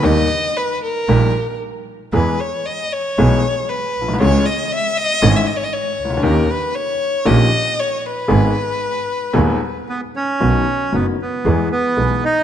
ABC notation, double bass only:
X:1
M:4/4
L:1/8
Q:1/4=116
K:G#m
V:1 name="Double bass" clef=bass
D,, z3 A,,, z3 | E,, z3 B,,, z2 B,,, | C,, z3 G,,, z2 C,, | D,, z3 A,,, z3 |
G,,, z3 D,, z3 | [K:B] B,,, z F,,, z E,, z B,,, z |]